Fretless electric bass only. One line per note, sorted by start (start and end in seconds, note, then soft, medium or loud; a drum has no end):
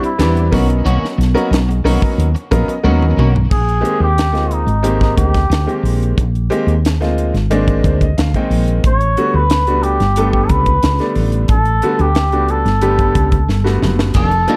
0.19 0.49 E2 loud
0.52 0.83 B1 medium
0.85 1.01 B1 loud
1.18 1.34 B1 medium
1.51 1.82 B1 medium
1.84 2.00 B1 medium
2.02 muted fretless electric bass stroke soft
2.18 2.33 D#2 medium
2.52 2.67 A#1 medium
2.67 muted fretless electric bass stroke soft
2.84 3.15 D#2 medium
3.17 3.48 B1 medium
3.51 3.82 A#1 medium
4.00 4.34 D#2 medium
4.34 4.65 D2 medium
4.67 5.13 G#1 medium
5.18 5.48 D2 medium
5.50 5.66 D2 medium
5.83 6.14 A#1 medium
6.17 6.48 A#1 medium
6.67 7.00 D#2 medium
7.00 7.31 D2 medium
7.34 7.80 G#1 medium
7.84 8.14 D2 medium
8.18 8.33 D2 medium
8.50 8.81 A#1 medium
8.84 9.14 A1 medium
9.34 9.67 D2 medium
9.67 9.97 C#2 medium
10.00 10.46 G1 medium
10.50 10.80 C#2 medium
10.83 10.98 C#2 medium
11.15 11.46 A1 loud
11.49 11.80 A1 medium
11.99 12.32 D2 medium
12.32 12.63 C#2 medium
12.65 13.11 G1 medium
13.15 13.46 C#2 medium
13.48 13.78 G1 medium
13.82 14.12 F#1 medium
14.15 14.45 F1 medium